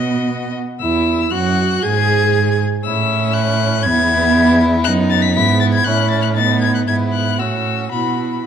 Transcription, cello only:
0.00 0.61 B2 medium
0.81 1.29 E2 medium
1.32 1.82 F#2 medium
1.83 2.58 G#2 medium
2.85 3.88 A2 medium
3.86 4.88 E2 loud
4.87 5.37 F#2 medium
5.36 5.85 G#2 medium
5.86 6.86 A2 medium
6.88 7.40 G#2 medium
7.39 7.92 A2 medium
7.92 8.45 B2 medium

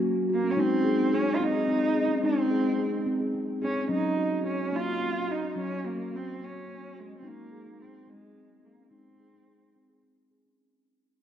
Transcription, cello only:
0.34 0.53 A#3 medium
0.51 0.61 C#4 medium
0.59 1.16 C4 medium
1.14 1.37 C#4 medium
1.35 1.44 F4 medium
1.43 2.24 D#4 medium
2.25 3.03 C4 medium
3.63 3.88 C#4 medium
3.91 4.42 D#4 medium
4.47 4.77 C#4 medium
4.76 5.33 F4 medium
5.31 5.58 D#4 medium
5.60 5.88 C#4 medium
5.86 6.17 A#3 medium
6.16 6.46 C4 medium
6.44 7.01 C#4 medium
7.00 7.17 G#3 medium
7.18 7.29 C4 medium
7.27 7.83 A#3 medium
7.82 8.11 C4 medium
8.10 8.67 G#3 medium
8.66 8.92 A#3 medium
8.93 9.99 C4 medium

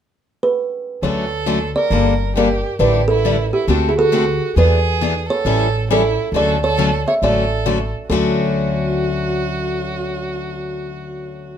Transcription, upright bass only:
1.02 1.73 D2 medium
1.90 2.62 G1 medium
2.79 3.50 A1 medium
3.68 4.39 D2 medium
4.56 5.27 E2 medium
5.45 6.16 A1 medium
6.32 7.03 D2 medium
7.22 7.92 A1 medium
8.10 11.58 D2 medium

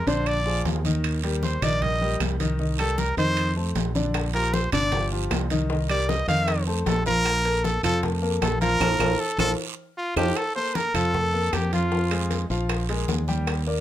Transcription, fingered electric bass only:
0.07 0.61 A#1 medium
0.65 1.56 D#2 medium
1.62 2.16 A#1 medium
2.20 3.12 C2 medium
3.17 3.72 F2 medium
3.75 4.67 A#1 medium
4.72 5.27 G1 loud
5.31 6.22 C2 medium
6.28 6.82 F2 medium
6.86 7.77 A#1 medium
7.83 8.38 F2 loud
8.41 8.78 A#1 medium
8.80 8.95 A#1 loud
8.99 9.14 A#1 loud
9.38 9.53 A#1 loud
10.16 10.31 F2 loud
10.94 11.49 F2 medium
11.53 12.44 F2 medium
12.50 13.04 A#1 medium
13.08 13.80 D#2 medium

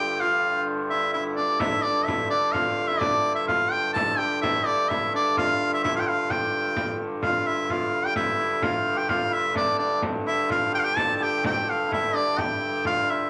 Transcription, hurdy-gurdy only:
0.00 1.61 G2 medium
0.00 1.60 D3 medium
1.60 7.22 G2 medium
1.60 7.23 D3 medium
7.22 12.85 G2 medium
7.22 12.85 D3 medium
12.85 13.30 G2 medium
12.85 13.30 D3 medium

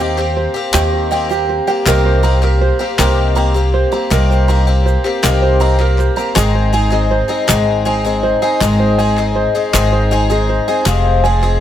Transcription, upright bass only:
0.00 0.46 D#2 loud
0.74 1.58 D#2 medium
1.86 2.71 C2 loud
2.99 3.83 C2 loud
4.11 4.96 C2 loud
5.24 6.08 C2 medium
6.36 7.21 G#1 loud
7.49 8.33 G#1 medium
8.61 9.46 G#1 loud
9.74 10.58 G#1 medium
10.86 11.60 F1 loud

